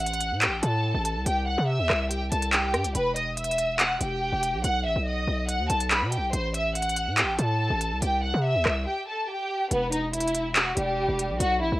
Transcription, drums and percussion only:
0.06 closed hi-hat
0.13 closed hi-hat
0.20 closed hi-hat
0.42 clap, closed hi-hat
0.63 closed hi-hat
1.05 closed hi-hat
1.26 closed hi-hat
1.89 cross-stick, clap
2.11 closed hi-hat
2.32 closed hi-hat
2.42 closed hi-hat
2.53 clap, closed hi-hat
2.74 cross-stick, closed hi-hat
2.84 closed hi-hat
2.95 closed hi-hat
3.16 closed hi-hat
3.37 closed hi-hat
3.44 closed hi-hat
3.51 closed hi-hat
3.58 closed hi-hat
3.79 clap, closed hi-hat
4.01 closed hi-hat
4.43 closed hi-hat
4.64 closed hi-hat
5.49 closed hi-hat
5.70 closed hi-hat
5.80 closed hi-hat
5.91 clap, closed hi-hat
6.12 closed hi-hat
6.33 closed hi-hat
6.54 closed hi-hat
6.75 closed hi-hat
6.82 closed hi-hat
6.89 closed hi-hat
6.96 closed hi-hat
7.18 clap, closed hi-hat
7.39 closed hi-hat
7.81 closed hi-hat
8.02 closed hi-hat
8.66 cross-stick, clap
9.71 closed hi-hat
9.92 closed hi-hat
10.13 closed hi-hat
10.20 closed hi-hat
10.28 closed hi-hat
10.35 closed hi-hat
10.56 clap, closed hi-hat
10.77 closed hi-hat
11.19 closed hi-hat
11.40 closed hi-hat

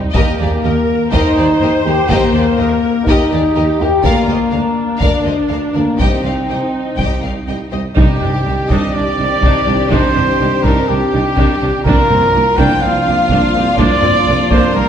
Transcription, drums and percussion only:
0.15 taiko
1.12 taiko
2.09 taiko
3.07 taiko
4.03 taiko
5.01 taiko
6.00 taiko
6.98 taiko
7.97 taiko
8.21 taiko low-mid
8.70 taiko
9.43 taiko
9.91 taiko
10.16 taiko low-mid
10.64 taiko
11.37 taiko
11.86 taiko
12.10 taiko low-mid
12.58 taiko
13.30 taiko
13.78 taiko
14.03 taiko low-mid
14.51 taiko

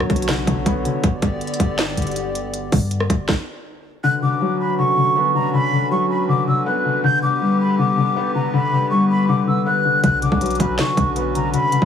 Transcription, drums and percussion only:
0.00 cross-stick
0.10 kick, cross-stick, closed hi-hat
0.16 closed hi-hat
0.22 closed hi-hat
0.29 snare, closed hi-hat
0.47 kick, closed hi-hat
0.66 kick, closed hi-hat
0.85 closed hi-hat
1.04 kick, closed hi-hat
1.22 kick, closed hi-hat
1.41 closed hi-hat
1.47 closed hi-hat
1.54 closed hi-hat
1.60 kick, closed hi-hat
1.79 snare, closed hi-hat
1.97 closed hi-hat
2.02 closed hi-hat
2.07 closed hi-hat
2.11 closed hi-hat
2.16 closed hi-hat
2.35 closed hi-hat
2.54 closed hi-hat
2.72 kick, open hi-hat
2.91 closed hi-hat
3.00 cross-stick
3.10 kick, cross-stick, closed hi-hat
3.29 kick, snare
10.04 kick, closed hi-hat
10.22 closed hi-hat
10.32 kick
10.41 closed hi-hat
10.46 closed hi-hat
10.50 closed hi-hat
10.55 closed hi-hat
10.60 kick, closed hi-hat
10.79 snare, closed hi-hat
10.97 kick, closed hi-hat
11.16 closed hi-hat
11.35 closed hi-hat
11.54 closed hi-hat
11.72 closed hi-hat
11.82 kick

